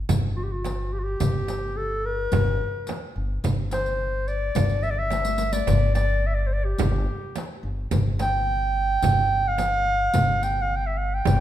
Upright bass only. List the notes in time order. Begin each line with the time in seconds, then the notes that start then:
0.09 G1
1.21 G1
2.32 G1
3.16 G1
3.44 G1
4.56 G1
5.67 G1
6.79 G1
7.63 G1
7.92 G1
9.02 G1
10.14 G1
11.26 G1